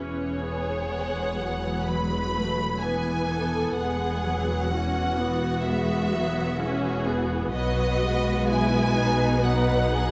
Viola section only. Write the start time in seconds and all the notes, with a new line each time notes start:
Already playing: E3 C#4
0.40 B3
0.89 G#3 B3
1.37 F#3
1.86 G#3
2.34 A3
2.81 E3 B3
3.78 G#3
4.26 F#3
4.72 E3 C#4
5.19 B3
5.67 G#3 B3
6.13 F#3
6.60 E3 C#4
7.07 B3
7.53 F#3 B3
8.01 G#3
9.44 F#3